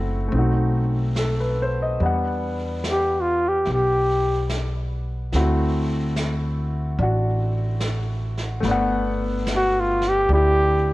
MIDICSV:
0, 0, Header, 1, 5, 480
1, 0, Start_track
1, 0, Key_signature, 1, "major"
1, 0, Tempo, 836820
1, 1150, Time_signature, 4, 2, 24, 8
1, 3065, Tempo, 827586
1, 6307, End_track
2, 0, Start_track
2, 0, Title_t, "Trumpet"
2, 0, Program_c, 0, 56
2, 1668, Note_on_c, 0, 67, 67
2, 1841, Note_on_c, 0, 65, 68
2, 1849, Note_off_c, 0, 67, 0
2, 1998, Note_on_c, 0, 67, 72
2, 2007, Note_off_c, 0, 65, 0
2, 2132, Note_off_c, 0, 67, 0
2, 2139, Note_on_c, 0, 67, 77
2, 2578, Note_off_c, 0, 67, 0
2, 5511, Note_on_c, 0, 66, 74
2, 5649, Note_on_c, 0, 65, 73
2, 5658, Note_off_c, 0, 66, 0
2, 5813, Note_on_c, 0, 67, 84
2, 5822, Note_off_c, 0, 65, 0
2, 5958, Note_off_c, 0, 67, 0
2, 5962, Note_on_c, 0, 67, 87
2, 6307, Note_off_c, 0, 67, 0
2, 6307, End_track
3, 0, Start_track
3, 0, Title_t, "Grand piano"
3, 0, Program_c, 1, 0
3, 0, Control_c, 1, 64, 127
3, 0, Note_on_c, 1, 57, 53
3, 0, Note_on_c, 1, 60, 48
3, 0, Note_on_c, 1, 64, 48
3, 0, Note_on_c, 1, 66, 59
3, 153, Note_off_c, 1, 57, 0
3, 162, Note_on_c, 1, 57, 47
3, 173, Note_off_c, 1, 60, 0
3, 182, Note_on_c, 1, 60, 43
3, 190, Control_c, 1, 64, 0
3, 195, Note_off_c, 1, 64, 0
3, 202, Note_off_c, 1, 66, 0
3, 202, Note_on_c, 1, 63, 42
3, 221, Note_on_c, 1, 66, 52
3, 277, Control_c, 1, 64, 127
3, 678, Note_on_c, 1, 69, 43
3, 804, Note_on_c, 1, 71, 43
3, 900, Note_off_c, 1, 69, 0
3, 930, Note_on_c, 1, 72, 45
3, 1004, Note_off_c, 1, 71, 0
3, 1045, Note_on_c, 1, 75, 45
3, 1069, Note_off_c, 1, 72, 0
3, 1139, Note_off_c, 1, 57, 0
3, 1149, Note_off_c, 1, 60, 0
3, 1152, Note_on_c, 1, 55, 41
3, 1156, Control_c, 1, 64, 0
3, 1159, Note_off_c, 1, 63, 0
3, 1162, Note_on_c, 1, 59, 38
3, 1169, Note_off_c, 1, 66, 0
3, 1171, Note_on_c, 1, 62, 39
3, 1180, Note_on_c, 1, 78, 46
3, 1206, Note_off_c, 1, 75, 0
3, 1270, Control_c, 1, 64, 127
3, 3064, Note_off_c, 1, 55, 0
3, 3068, Note_on_c, 1, 57, 50
3, 3068, Note_on_c, 1, 60, 46
3, 3070, Note_off_c, 1, 59, 0
3, 3071, Control_c, 1, 64, 0
3, 3073, Note_on_c, 1, 64, 44
3, 3074, Note_off_c, 1, 62, 0
3, 3076, Note_on_c, 1, 66, 58
3, 3079, Note_off_c, 1, 78, 0
3, 3180, Control_c, 1, 64, 127
3, 4021, Note_on_c, 1, 62, 44
3, 4030, Note_off_c, 1, 66, 0
3, 4039, Note_on_c, 1, 66, 50
3, 4947, Note_off_c, 1, 57, 0
3, 4956, Note_on_c, 1, 57, 56
3, 4982, Note_off_c, 1, 62, 0
3, 4983, Note_on_c, 1, 59, 54
3, 4985, Note_off_c, 1, 60, 0
3, 4988, Note_off_c, 1, 64, 0
3, 4991, Note_off_c, 1, 66, 0
3, 4991, Control_c, 1, 64, 0
3, 4999, Note_on_c, 1, 62, 50
3, 5019, Note_on_c, 1, 78, 62
3, 5093, Control_c, 1, 64, 127
3, 5930, Note_off_c, 1, 62, 0
3, 5939, Note_on_c, 1, 62, 45
3, 5956, Note_on_c, 1, 64, 42
3, 5959, Note_on_c, 1, 67, 51
3, 6307, Note_off_c, 1, 57, 0
3, 6307, Note_off_c, 1, 59, 0
3, 6307, Note_off_c, 1, 62, 0
3, 6307, Note_off_c, 1, 64, 0
3, 6307, Note_off_c, 1, 67, 0
3, 6307, Note_off_c, 1, 78, 0
3, 6307, End_track
4, 0, Start_track
4, 0, Title_t, "Upright bass"
4, 0, Program_c, 2, 32
4, 0, Note_on_c, 2, 30, 77
4, 162, Note_off_c, 2, 30, 0
4, 184, Note_on_c, 2, 35, 78
4, 1127, Note_off_c, 2, 35, 0
4, 1148, Note_on_c, 2, 40, 74
4, 2083, Note_off_c, 2, 40, 0
4, 2105, Note_on_c, 2, 35, 72
4, 3040, Note_off_c, 2, 35, 0
4, 3060, Note_on_c, 2, 38, 79
4, 3999, Note_off_c, 2, 38, 0
4, 4017, Note_on_c, 2, 33, 81
4, 4957, Note_off_c, 2, 33, 0
4, 4970, Note_on_c, 2, 31, 78
4, 5913, Note_off_c, 2, 31, 0
4, 5934, Note_on_c, 2, 38, 83
4, 6307, Note_off_c, 2, 38, 0
4, 6307, End_track
5, 0, Start_track
5, 0, Title_t, "Drums"
5, 185, Note_on_c, 9, 25, 31
5, 664, Note_on_c, 9, 38, 44
5, 664, Note_on_c, 9, 44, 49
5, 721, Note_off_c, 9, 38, 0
5, 721, Note_off_c, 9, 44, 0
5, 1143, Note_off_c, 9, 25, 0
5, 1143, Note_on_c, 9, 25, 30
5, 1627, Note_on_c, 9, 38, 44
5, 1627, Note_on_c, 9, 44, 43
5, 1685, Note_off_c, 9, 38, 0
5, 1685, Note_off_c, 9, 44, 0
5, 2095, Note_off_c, 9, 25, 0
5, 2095, Note_on_c, 9, 25, 36
5, 2095, Note_on_c, 9, 38, 28
5, 2152, Note_off_c, 9, 38, 0
5, 2578, Note_on_c, 9, 38, 45
5, 2578, Note_on_c, 9, 44, 53
5, 2636, Note_off_c, 9, 38, 0
5, 2636, Note_off_c, 9, 44, 0
5, 3054, Note_off_c, 9, 25, 0
5, 3054, Note_on_c, 9, 25, 40
5, 3054, Note_on_c, 9, 38, 29
5, 3112, Note_off_c, 9, 38, 0
5, 3538, Note_on_c, 9, 38, 41
5, 3538, Note_on_c, 9, 44, 51
5, 3596, Note_off_c, 9, 38, 0
5, 3596, Note_off_c, 9, 44, 0
5, 4017, Note_off_c, 9, 25, 0
5, 4017, Note_on_c, 9, 25, 33
5, 4491, Note_on_c, 9, 38, 49
5, 4491, Note_on_c, 9, 44, 47
5, 4549, Note_off_c, 9, 38, 0
5, 4549, Note_off_c, 9, 44, 0
5, 4822, Note_on_c, 9, 38, 27
5, 4880, Note_off_c, 9, 38, 0
5, 4972, Note_off_c, 9, 25, 0
5, 4972, Note_on_c, 9, 25, 35
5, 4972, Note_on_c, 9, 38, 32
5, 5030, Note_off_c, 9, 38, 0
5, 5455, Note_on_c, 9, 38, 47
5, 5455, Note_on_c, 9, 44, 50
5, 5513, Note_off_c, 9, 38, 0
5, 5513, Note_off_c, 9, 44, 0
5, 5775, Note_on_c, 9, 38, 28
5, 5833, Note_off_c, 9, 38, 0
5, 5939, Note_off_c, 9, 25, 0
5, 5939, Note_on_c, 9, 25, 36
5, 6307, Note_off_c, 9, 25, 0
5, 6307, End_track
0, 0, End_of_file